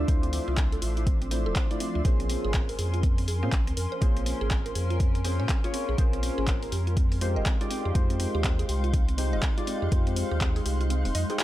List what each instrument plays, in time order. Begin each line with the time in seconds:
Already playing: ambient pad F3 D4 C6 E6, analog synth pad C5 E5 D6
0.08 sub bass D2, synth stab A3 D4 E4 F4 C5, synth arpeggio sound C4, kick, closed hi-hat
0.23 synth arpeggio sound C4, closed hi-hat
0.33 synth arpeggio sound C4, open hi-hat
0.48 sub bass C2, synth arpeggio sound F4
0.57 synth arpeggio sound C4, kick, clap, closed hi-hat
0.72 synth arpeggio sound A4, closed hi-hat
0.82 sub bass A1, synth arpeggio sound F4, open hi-hat
0.97 synth arpeggio sound E4, closed hi-hat
1.07 synth arpeggio sound C4, kick, closed hi-hat
1.22 synth arpeggio sound C4, closed hi-hat
1.31 synth stab A3 D4 E4 F4 C5, synth arpeggio sound C4, open hi-hat
1.46 sub bass D1, synth arpeggio sound A4
1.56 synth arpeggio sound C4, kick, clap, closed hi-hat
1.70 synth stab A3 D4 E4 F4 D5, synth arpeggio sound E4, closed hi-hat
1.80 synth arpeggio sound C4, open hi-hat
1.95 sub bass D2, synth arpeggio sound F4
2.04 sub bass A#1, synth stab A#3 C#4 F4 G#4 C5, synth arpeggio sound C4, ambient pad C#4, analog synth pad C#4 A#4 G#5 C6, kick, closed hi-hat
2.20 synth arpeggio sound C4, closed hi-hat
2.30 synth arpeggio sound C4, open hi-hat
2.44 sub bass G#1, synth arpeggio sound G#4
2.49 ambient pad A#4 G#5
2.54 synth arpeggio sound C4, kick, clap, closed hi-hat
2.69 synth arpeggio sound A#4, open hi-hat
2.79 sub bass F2, synth arpeggio sound G#4, open hi-hat
2.94 synth arpeggio sound F4, closed hi-hat
3.03 synth arpeggio sound C4, kick, closed hi-hat
3.18 synth arpeggio sound C4, open hi-hat
3.28 synth arpeggio sound G#4, open hi-hat
3.43 sub bass A#2, synth stab A#3 C#4 F4 G#4 C5, synth arpeggio sound C4
3.52 sub bass A#1, synth arpeggio sound C#4, kick, clap, closed hi-hat
3.67 sub bass D#2, synth arpeggio sound C4, closed hi-hat
3.77 sub bass F2, synth arpeggio sound A#4, open hi-hat
3.92 synth arpeggio sound C5
4.01 sub bass A#1, synth stab A#3 C#4 F4 G#4 C5, synth arpeggio sound C4, kick, closed hi-hat
4.17 synth arpeggio sound C4, closed hi-hat
4.26 synth arpeggio sound C4, open hi-hat
4.41 sub bass G#1, synth arpeggio sound G#4
4.51 synth arpeggio sound C4, kick, clap, closed hi-hat
4.66 synth arpeggio sound A#4, closed hi-hat
4.75 sub bass F2, synth arpeggio sound G#4, open hi-hat
4.90 synth arpeggio sound F4, closed hi-hat
5.00 synth arpeggio sound C4, kick, closed hi-hat
5.15 synth arpeggio sound C4, closed hi-hat
5.24 synth stab A#3 C#4 F4 G#4 C5, synth arpeggio sound C4, open hi-hat
5.40 sub bass A#2, synth arpeggio sound C#5
5.49 synth arpeggio sound C4, kick, clap, closed hi-hat
5.64 synth stab A#3 C#4 F4 G#4 C#5, synth arpeggio sound F4, closed hi-hat
5.74 synth arpeggio sound C4, open hi-hat
5.89 sub bass A#1, synth arpeggio sound G#4
5.98 sub bass A#1, synth stab A#3 C#4 F4 G#4 C5, synth arpeggio sound C4, kick, closed hi-hat
6.13 synth arpeggio sound C4, closed hi-hat
6.23 synth arpeggio sound C4, open hi-hat
6.38 sub bass G#1, synth arpeggio sound G#4
6.48 synth arpeggio sound C4, kick, clap, closed hi-hat
6.63 synth arpeggio sound A#4, open hi-hat
6.72 sub bass F2, analog synth pad G#3 F5 G5 C6, ambient pad D#4, synth arpeggio sound G4, open hi-hat
6.87 synth arpeggio sound F4, closed hi-hat
6.97 synth arpeggio sound C4, kick, closed hi-hat
7.12 synth arpeggio sound C4, open hi-hat
7.18 ambient pad G#3 F5, synth stab G#3 D#4 F4 G4 C5, synth arpeggio sound C4, open hi-hat
7.36 sub bass F1, synth arpeggio sound D#5
7.46 synth arpeggio sound C4, kick, clap, closed hi-hat
7.60 synth stab G#3 D#4 F4 G4 D5, synth arpeggio sound F4, closed hi-hat
7.71 synth arpeggio sound C4, open hi-hat
7.85 sub bass F2, synth arpeggio sound G4
7.94 sub bass F2, synth stab G#3 D#4 F4 G4 C5, synth arpeggio sound C4, kick, closed hi-hat
8.10 synth arpeggio sound C4, closed hi-hat
8.20 synth arpeggio sound C4, open hi-hat
8.35 sub bass D#2, synth arpeggio sound G4
8.44 synth arpeggio sound C4, kick, clap, closed hi-hat
8.59 synth arpeggio sound G#4, closed hi-hat
8.69 sub bass C2, synth arpeggio sound G4, open hi-hat
8.84 synth arpeggio sound F4, closed hi-hat
8.93 synth arpeggio sound C4, kick, closed hi-hat
9.08 synth arpeggio sound C4, closed hi-hat
9.18 synth stab G#3 D#4 F4 G4 C5, synth arpeggio sound C4, open hi-hat
9.33 sub bass F1, synth arpeggio sound D#5
9.43 synth arpeggio sound C4, kick, clap, closed hi-hat
9.57 synth stab G#3 D#4 F4 G4 D5, synth arpeggio sound F4, closed hi-hat
9.67 synth arpeggio sound C4, open hi-hat
9.82 sub bass F2, synth arpeggio sound G4
9.91 sub bass F2, synth stab G#3 D#4 F4 G4 C5, synth arpeggio sound C4, kick, closed hi-hat
10.07 synth arpeggio sound C4, closed hi-hat
10.16 synth arpeggio sound C4, open hi-hat
10.31 sub bass D#2, synth arpeggio sound G4
10.41 synth arpeggio sound C4, kick, clap, closed hi-hat
10.56 synth arpeggio sound G#4, open hi-hat
10.66 sub bass C2, synth arpeggio sound G4, open hi-hat
10.81 synth arpeggio sound F4, closed hi-hat
10.90 synth arpeggio sound C4, closed hi-hat
11.05 sub bass F1, synth arpeggio sound C4, open hi-hat
11.15 sub bass F2, synth arpeggio sound D#5, open hi-hat
11.29 synth stab G#3 D#4 F4 G4 C5, synth arpeggio sound G#4, closed hi-hat
11.39 synth arpeggio sound G4, clap, closed hi-hat